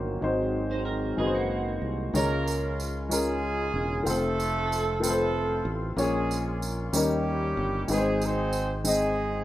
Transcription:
0.00 0.20 G1 medium
0.00 0.25 A#2 medium
0.00 0.21 D#3 medium
0.00 2.11 F#3 medium
0.00 0.19 A#3 medium
0.00 0.24 A#3 medium
0.00 0.22 D#4 medium
0.00 0.23 F#4 medium
0.00 0.13 C5 medium
0.00 0.25 C#5 medium
0.21 1.14 G#1 medium
0.21 1.15 G#2 soft
0.21 2.13 D#3 medium
0.21 1.08 G#3 medium
0.21 2.13 G#3 medium
0.21 2.13 C4 medium
0.21 1.08 D#4 medium
0.21 1.09 F#4 medium
0.21 1.09 C5 medium
0.71 0.86 D#4 medium
0.71 0.85 C5 medium
0.85 1.16 A#4 medium
1.17 1.78 F#1 medium
1.17 2.04 G#3 medium
1.17 1.34 C4 medium
1.17 2.04 D#4 medium
1.17 2.04 F#4 medium
1.17 1.34 G#4 medium
1.17 1.26 B4 medium
1.26 2.08 C5 medium
1.34 2.11 A#3 soft
1.34 2.11 F#4 soft
1.82 2.12 C2 medium
2.14 3.70 C#2 medium
2.14 3.07 C#3 soft
2.14 3.00 G#3 medium
2.14 2.75 A#3 medium
2.14 3.00 C#4 medium
2.14 3.07 C#4 medium
2.14 3.00 F4 medium
2.14 3.08 F4 medium
2.14 2.75 A#4 loud
2.14 3.01 C#5 medium
2.14 tambourine medium
2.48 tambourine soft
2.80 tambourine soft
3.09 3.95 G#3 medium
3.09 3.96 C#4 medium
3.09 3.96 F4 medium
3.09 3.97 A#4 medium
3.09 tambourine medium
3.13 4.04 G#3 medium
3.13 4.04 C#4 medium
3.13 4.04 F4 medium
3.13 4.04 G#4 loud
3.74 4.04 E1 medium
4.03 5.62 F1 loud
4.03 4.90 A3 medium
4.03 4.91 C4 medium
4.03 4.92 F4 medium
4.03 4.92 C5 medium
4.03 tambourine medium
4.09 5.00 A3 loud
4.09 5.00 C4 medium
4.09 5.00 F4 medium
4.09 5.00 A4 loud
4.40 tambourine soft
4.72 tambourine soft
5.00 5.87 A3 medium
5.00 5.87 C4 medium
5.00 5.88 F4 medium
5.00 5.09 B4 medium
5.00 tambourine medium
5.05 5.71 A3 medium
5.05 5.95 C4 medium
5.05 5.95 F4 medium
5.05 5.71 A4 loud
5.10 5.91 C5 medium
5.65 5.95 A1 medium
5.96 6.89 A#1 medium
5.96 6.90 A#2 medium
5.96 6.83 A#3 medium
5.96 6.83 C#4 medium
5.96 6.84 F4 medium
5.96 6.84 C#5 medium
5.96 tambourine medium
6.01 6.60 G#3 medium
6.01 6.91 C#4 medium
6.01 6.91 F4 medium
6.01 6.60 G#4 medium
6.31 tambourine soft
6.62 tambourine medium
6.93 7.53 D#2 medium
6.93 7.86 D#3 medium
6.93 7.79 G3 medium
6.93 7.87 G3 medium
6.93 7.79 C#4 medium
6.93 7.87 C#4 medium
6.93 7.80 D#4 medium
6.93 7.87 G4 medium
6.93 7.80 A#4 medium
6.93 tambourine medium
6.97 7.87 A#3 medium
7.57 7.87 G1 medium
7.88 9.44 G#1 medium
7.88 8.82 G#2 medium
7.88 8.74 G#3 medium
7.88 8.75 C4 medium
7.88 8.75 D#4 medium
7.88 7.97 B4 medium
7.88 tambourine medium
7.92 8.23 G#3 medium
7.92 8.25 C4 medium
7.92 8.24 D#4 medium
7.92 8.23 G#4 medium
7.98 8.79 C5 medium
8.22 8.73 C4 loud
8.22 8.73 D#4 medium
8.22 8.73 G#4 medium
8.22 8.73 C5 loud
8.22 tambourine soft
8.53 tambourine soft
8.84 9.44 G#3 medium
8.84 9.44 C4 medium
8.84 9.44 D#4 medium
8.84 9.44 D#5 medium
8.84 tambourine medium
8.90 9.44 G#3 medium
8.90 9.44 C4 medium
8.90 9.44 D#4 medium
8.90 9.44 G#4 medium

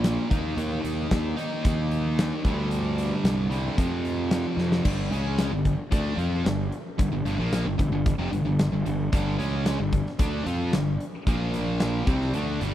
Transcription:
0.00 0.17 A#1 medium
0.00 0.29 A#2 medium
0.00 0.29 F3 medium
0.00 0.28 A#3 medium
0.04 snare loud
0.04 closed hi-hat loud
0.30 0.53 D#2 loud
0.30 1.36 D#3 medium
0.30 1.36 A#3 medium
0.30 1.36 D#4 loud
0.30 kick loud
0.30 closed hi-hat medium
0.57 0.79 D#2 loud
0.57 closed hi-hat loud
0.84 1.06 D#2 medium
0.84 closed hi-hat medium
1.11 1.33 D#2 loud
1.11 kick medium
1.11 snare loud
1.11 closed hi-hat medium
1.37 2.44 D#3 medium
1.37 2.43 A#3 medium
1.37 2.42 D#4 medium
1.37 closed hi-hat medium
1.65 2.31 D#2 medium
1.65 kick loud
1.65 closed hi-hat medium
1.91 closed hi-hat medium
2.19 snare loud
2.19 closed hi-hat medium
2.44 3.11 D2 medium
2.44 3.50 G2 medium
2.44 3.50 D3 medium
2.44 3.49 G3 loud
2.44 kick loud
2.44 closed hi-hat medium
2.71 closed hi-hat medium
2.98 closed hi-hat medium
3.24 3.68 C2 medium
3.24 snare medium
3.24 closed hi-hat medium
3.50 3.77 G2 medium
3.50 3.77 D3 medium
3.50 3.76 G3 medium
3.50 snare soft
3.50 closed hi-hat medium
3.77 4.83 F2 medium
3.77 4.44 F2 medium
3.77 4.83 C3 medium
3.77 4.84 F3 loud
3.77 kick loud
3.77 closed hi-hat medium
4.05 closed hi-hat medium
4.31 snare loud
4.31 closed hi-hat medium
4.57 4.79 F2 medium
4.57 snare medium
4.72 snare medium
4.85 5.10 G1 medium
4.85 5.11 G2 medium
4.85 5.11 D3 medium
4.85 5.11 G3 loud
4.85 kick loud
4.85 crash loud
5.11 5.48 C#2 medium
5.11 5.51 C#3 medium
5.11 5.51 G#3 medium
5.11 5.51 C#4 medium
5.11 snare soft
5.11 closed hi-hat medium
5.38 snare loud
5.38 closed hi-hat loud
5.51 5.76 G1 medium
5.51 5.73 G2 medium
5.51 5.73 D3 medium
5.65 kick medium
5.65 closed hi-hat medium
5.91 6.17 D2 medium
5.91 6.17 D3 medium
5.91 6.17 A3 loud
5.91 6.18 D4 loud
5.91 kick loud
5.91 closed hi-hat loud
6.17 6.43 F2 medium
6.17 6.44 F3 medium
6.17 6.44 C4 loud
6.17 6.45 F4 loud
6.17 closed hi-hat medium
6.44 6.70 G1 medium
6.44 6.66 G2 medium
6.44 6.66 D3 medium
6.44 snare loud
6.44 closed hi-hat medium
6.72 closed hi-hat medium
6.99 7.11 G1 medium
6.99 7.11 G2 medium
6.99 7.11 D3 medium
6.99 kick loud
6.99 closed hi-hat medium
7.12 7.25 G1 medium
7.12 7.24 G2 medium
7.12 7.25 D3 medium
7.25 7.38 G1 medium
7.25 7.38 G2 medium
7.25 7.38 D3 medium
7.25 closed hi-hat medium
7.38 7.63 A#1 medium
7.38 7.65 A#2 medium
7.38 7.65 F3 medium
7.38 7.65 A#3 loud
7.52 snare loud
7.52 closed hi-hat medium
7.65 7.78 G1 medium
7.65 7.77 G2 medium
7.65 7.78 D3 medium
7.78 7.91 G1 medium
7.78 7.91 G2 medium
7.78 7.91 D3 medium
7.78 kick medium
7.78 closed hi-hat medium
7.92 8.17 G1 medium
7.92 8.14 G2 medium
7.92 8.14 D3 medium
8.06 kick loud
8.06 closed hi-hat medium
8.19 8.31 F1 medium
8.19 8.31 F2 loud
8.19 8.31 C3 loud
8.32 8.45 G1 medium
8.32 8.44 G2 medium
8.32 8.45 D3 medium
8.32 closed hi-hat medium
8.45 8.70 G1 medium
8.45 8.67 G2 medium
8.45 8.67 D3 medium
8.59 snare loud
8.59 closed hi-hat medium
8.72 8.85 G1 medium
8.72 8.85 G2 medium
8.72 8.85 D3 medium
8.86 9.11 G1 medium
8.86 9.07 G2 medium
8.86 9.07 D3 medium
8.86 closed hi-hat medium
9.12 9.38 G1 loud
9.12 9.38 G2 loud
9.12 9.38 D3 loud
9.12 9.38 G3 loud
9.12 kick loud
9.12 closed hi-hat medium
9.38 9.77 C#2 medium
9.38 9.78 C#3 medium
9.38 9.78 G#3 medium
9.38 9.78 C#4 medium
9.38 snare soft
9.38 closed hi-hat medium
9.66 snare medium
9.66 closed hi-hat medium
9.79 10.04 G1 medium
9.79 10.01 G2 soft
9.79 10.01 D3 medium
9.93 kick medium
9.93 closed hi-hat medium
10.06 snare soft
10.19 10.44 D2 medium
10.19 10.45 D3 loud
10.19 10.45 A3 loud
10.19 10.46 D4 loud
10.19 kick loud
10.19 closed hi-hat loud
10.46 10.71 F2 medium
10.46 10.72 F3 loud
10.46 10.72 C4 loud
10.46 10.73 F4 loud
10.46 closed hi-hat medium
10.72 10.98 G1 medium
10.72 10.95 G2 medium
10.72 10.95 D3 medium
10.72 snare loud
10.72 closed hi-hat loud
11.00 closed hi-hat medium
11.27 12.03 A#1 loud
11.27 12.06 A#2 loud
11.27 12.07 F3 loud
11.27 12.07 A#3 loud
11.27 kick loud
11.27 closed hi-hat medium
11.54 snare soft
11.54 closed hi-hat medium
11.80 snare loud
11.80 closed hi-hat medium
12.06 12.32 C2 loud
12.06 12.33 C3 medium
12.06 12.33 G3 loud
12.06 12.33 C4 loud
12.06 kick loud
12.06 closed hi-hat medium
12.21 snare soft
12.34 12.59 D2 medium
12.34 12.60 D3 medium
12.34 12.60 A3 loud
12.34 12.61 D4 loud
12.34 closed hi-hat medium
12.61 12.74 G1 medium
12.61 12.74 G2 loud
12.61 12.74 D3 medium
12.61 12.74 G3 loud
12.61 closed hi-hat medium

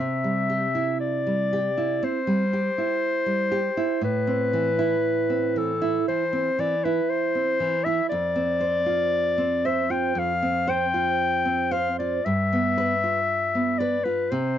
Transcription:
0.00 2.00 C3 medium
0.00 0.97 E5 medium
0.24 0.65 G3 medium
0.50 0.91 G4 medium
0.75 1.58 E4 medium
1.00 2.06 D5 medium
1.27 1.68 G3 soft
1.53 1.94 G4 medium
1.77 2.19 E4 medium
2.03 2.44 C4 medium
2.03 4.04 C5 medium
2.27 2.68 G3 medium
2.53 2.94 G4 medium
2.78 3.58 E4 medium
3.26 3.68 G3 medium
3.52 3.93 G4 medium
3.77 4.04 E4 medium
4.01 6.03 A2 medium
4.01 5.59 B4 medium
4.27 4.69 C4 medium
4.53 4.95 E3 medium
4.79 5.61 E4 medium
5.30 5.71 C4 medium
5.56 5.97 E3 medium
5.56 6.08 A4 medium
5.82 6.23 E4 medium
6.08 6.49 E3 medium
6.08 6.61 C5 medium
6.33 6.74 C4 medium
6.59 7.00 E3 medium
6.59 6.86 D5 medium
6.84 7.65 E4 medium
6.84 7.11 B4 medium
7.10 7.86 C5 medium
7.35 7.75 C4 soft
7.60 8.00 E3 medium
7.84 8.11 E4 medium
7.84 8.09 E5 medium
8.10 10.14 F2 medium
8.10 9.67 D5 medium
8.36 8.76 C4 medium
8.61 9.02 C5 medium
8.86 9.70 F4 medium
9.38 9.80 C4 medium
9.65 10.07 C5 medium
9.65 9.93 E5 medium
9.90 10.32 F4 medium
9.90 10.20 G5 medium
10.15 12.19 F2 medium
10.15 10.71 F5 medium
10.43 10.84 C4 medium
10.67 11.09 C5 medium
10.67 11.73 G5 loud
10.94 11.76 F4 medium
11.45 11.87 C4 soft
11.71 12.13 C5 medium
11.71 11.98 F5 medium
11.98 12.25 F4 medium
11.98 12.27 D5 medium
12.25 14.28 G2 medium
12.25 13.80 E5 medium
12.53 12.93 B3 medium
12.78 13.18 B4 medium
13.04 13.85 F4 medium
13.55 13.95 B3 medium
13.79 14.21 B4 medium
13.79 14.06 D5 medium
14.04 14.31 F4 medium
14.04 14.32 B4 medium
14.31 14.58 C3 medium
14.31 14.58 C5 medium

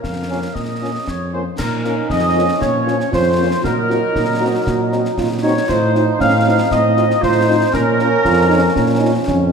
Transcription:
0.00 1.03 A#4 medium
0.00 0.51 F5 medium
0.00 concert bass drum medium
0.00 snare medium
0.05 0.47 F2 soft
0.29 0.39 A#3 soft
0.29 0.38 C#4 soft
0.29 0.39 C#4 soft
0.29 0.39 F4 soft
0.54 0.99 A#2 soft
0.54 1.06 D#5 medium
0.54 concert bass drum medium
0.54 snare soft
0.81 0.90 A#3 soft
0.81 0.91 A#3 soft
0.81 0.90 C#4 soft
0.81 0.91 C#4 soft
0.81 0.91 F4 soft
1.07 1.50 F2 soft
1.07 1.34 C#5 soft
1.07 concert bass drum medium
1.07 snare medium
1.32 1.41 A#3 soft
1.32 1.42 A#3 soft
1.32 1.41 C#4 soft
1.32 1.42 C#4 soft
1.32 1.42 F4 soft
1.32 1.45 C5 medium
1.57 2.01 A#2 medium
1.57 3.59 F3 medium
1.57 3.59 C#4 medium
1.57 2.61 D#4 medium
1.57 2.06 A#4 medium
1.57 2.07 A#4 medium
1.57 concert bass drum medium
1.57 snare medium
1.57 crash medium
1.84 1.94 A#3 medium
1.84 1.94 C#4 medium
1.84 1.94 F4 medium
1.84 snare soft
2.09 2.53 F2 medium
2.09 2.63 D#5 medium
2.09 2.58 D#5 medium
2.09 concert bass drum medium
2.09 snare medium
2.35 2.44 A#3 medium
2.35 2.45 C#4 medium
2.35 2.45 F4 medium
2.59 3.04 A#2 medium
2.59 3.11 C#4 medium
2.59 3.12 C#5 medium
2.59 3.09 C#5 medium
2.59 concert bass drum medium
2.59 snare medium
2.86 2.95 A#3 medium
2.86 2.96 C#4 medium
2.86 2.96 F4 medium
2.86 snare soft
3.00 snare medium
3.12 3.55 F2 medium
3.12 3.60 F4 medium
3.12 3.60 C5 medium
3.12 3.61 C5 medium
3.12 concert bass drum medium
3.12 snare medium
3.38 3.47 A#3 medium
3.38 3.48 C#4 medium
3.38 3.47 F4 medium
3.63 4.03 A#2 medium
3.63 5.65 F#3 medium
3.63 5.65 D#4 medium
3.63 3.75 F#4 medium
3.63 5.14 A#4 medium
3.63 concert bass drum medium
3.63 snare medium
3.89 3.98 C4 medium
3.89 3.99 D#4 medium
3.89 4.01 F4 medium
3.89 3.98 F#4 medium
3.89 snare soft
4.13 4.58 A#2 medium
4.13 4.25 D#4 medium
4.13 concert bass drum medium
4.13 snare medium
4.40 4.50 C4 medium
4.40 4.50 D#4 medium
4.40 5.13 F#4 medium
4.40 4.50 F#4 medium
4.67 5.09 A#2 medium
4.67 concert bass drum medium
4.67 snare medium
4.92 5.01 C4 medium
4.92 5.01 D#4 medium
4.92 5.02 F#4 medium
4.92 snare soft
5.05 snare medium
5.18 5.60 A#2 medium
5.18 5.29 F4 medium
5.18 concert bass drum medium
5.18 snare medium
5.43 5.53 C4 medium
5.43 5.67 D#4 medium
5.43 5.52 D#4 medium
5.43 5.52 F#4 medium
5.43 5.67 C#5 medium
5.43 5.71 C#5 medium
5.68 6.12 A2 medium
5.68 7.71 F3 medium
5.68 7.70 D#4 medium
5.68 5.80 F4 medium
5.68 6.16 C5 medium
5.68 6.20 C5 medium
5.68 concert bass drum medium
5.68 snare medium
5.68 crash soft
5.93 6.03 C4 medium
5.93 6.05 D#4 medium
5.93 6.03 D#4 medium
5.93 6.04 F4 medium
5.93 snare soft
6.19 6.63 A2 medium
6.19 6.47 C#4 medium
6.19 6.68 F5 medium
6.19 6.74 F5 loud
6.19 concert bass drum medium
6.19 snare medium
6.45 6.70 C4 medium
6.45 6.56 C4 medium
6.45 6.56 D#4 medium
6.45 6.56 F4 medium
6.71 7.14 A2 medium
6.71 7.19 C4 medium
6.71 7.23 D#5 loud
6.71 concert bass drum medium
6.71 snare medium
6.96 7.06 C4 medium
6.96 7.06 D#4 medium
6.96 7.06 F4 medium
6.96 snare soft
7.10 snare medium
7.21 7.65 A2 medium
7.21 7.48 F4 medium
7.21 7.73 C5 medium
7.21 7.70 C5 loud
7.21 concert bass drum medium
7.21 snare medium
7.46 7.57 C4 medium
7.46 7.72 D#4 medium
7.46 7.57 D#4 medium
7.46 7.58 F4 medium
7.72 8.17 A#2 medium
7.72 9.52 F3 medium
7.72 8.04 C#4 medium
7.72 9.52 C#4 medium
7.72 9.23 A#4 loud
7.72 9.24 A#4 loud
7.72 concert bass drum medium
7.72 snare medium
7.99 8.09 C#4 medium
7.99 8.09 F4 medium
7.99 snare soft
8.24 8.68 F2 medium
8.24 8.48 F4 loud
8.24 concert bass drum medium
8.24 snare medium
8.49 8.60 C#4 medium
8.49 8.61 D#4 medium
8.49 8.60 F4 medium
8.74 9.19 A#2 loud
8.74 8.99 C#4 medium
8.74 concert bass drum medium
8.74 snare medium
9.00 9.12 C#4 medium
9.00 9.12 D#4 medium
9.00 9.12 F4 medium
9.28 9.52 F2 medium
9.28 9.52 C#4 medium
9.28 concert bass drum medium
9.28 snare medium

